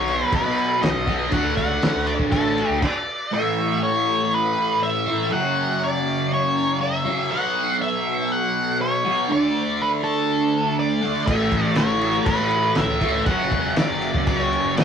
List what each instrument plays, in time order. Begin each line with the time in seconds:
Already playing: picked electric bass B1, distorted electric guitar B2 F#3 B3, lead electric guitar C#5
0.08 crash
0.32 picked electric bass B2, lead electric guitar B4, kick, crash
0.45 picked electric bass B2
0.58 crash
0.82 picked electric bass B1, lead electric guitar D#5, snare, crash
0.96 picked electric bass B1
1.07 distorted electric guitar F#3 B3, kick, crash
1.11 distorted electric guitar B2
1.31 picked electric bass D2, distorted electric guitar D3 A3, lead electric guitar F#5, kick, crash
1.35 distorted electric guitar D4
1.57 picked electric bass C#2, lead electric guitar F#5, kick, crash
1.82 snare, crash
1.96 picked electric bass D2
2.06 lead electric guitar D5, crash
2.20 picked electric bass A1, kick
2.32 lead electric guitar A4, kick, crash
2.58 crash
2.69 picked electric bass D2
2.82 lead electric guitar D5, kick, crash
3.32 distorted electric guitar A2 E3 A3, lead electric guitar E5
3.83 lead electric guitar C#5
4.34 lead electric guitar B4
4.83 lead electric guitar E5
5.06 distorted electric guitar A2 E3 A3
5.30 distorted electric guitar F#2 C#3, lead electric guitar F#5
5.34 distorted electric guitar F#3
5.84 lead electric guitar D5
6.34 lead electric guitar C#5
6.81 lead electric guitar E5
7.05 distorted electric guitar F#2 C#3 F#3
7.30 distorted electric guitar B2 F#3 B3, lead electric guitar F#5
7.82 lead electric guitar E5
8.32 lead electric guitar F#5
8.81 lead electric guitar C#5
9.05 distorted electric guitar B2 F#3 B3
9.28 distorted electric guitar D3 A3
9.32 distorted electric guitar D4, lead electric guitar D5
9.82 lead electric guitar B4
10.04 lead electric guitar A4
10.80 lead electric guitar D5
11.01 distorted electric guitar D3 A3 D4
11.26 picked electric bass A1, distorted electric guitar A2 E3 A3, lead electric guitar E5, kick, crash
11.52 picked electric bass A1, kick, crash
11.75 picked electric bass A1, lead electric guitar C#5, snare, crash
12.01 crash
12.25 picked electric bass A2, lead electric guitar B4, kick, crash
12.39 picked electric bass A2
12.50 crash
12.75 picked electric bass A1, lead electric guitar E5, snare, crash
12.88 picked electric bass C#2
13.00 distorted electric guitar A2 E3 A3, kick, crash
13.26 picked electric bass F#1, distorted electric guitar F#2 C#3 F#3, lead electric guitar F#5, kick, crash
13.51 picked electric bass E1, kick, crash
13.76 lead electric guitar D5, snare, crash
13.90 picked electric bass F#1
14.02 crash
14.14 picked electric bass C#2, kick
14.27 lead electric guitar D5, kick, crash
14.39 lead electric guitar C#5
14.53 crash
14.64 picked electric bass F#1
14.77 lead electric guitar E5, snare, crash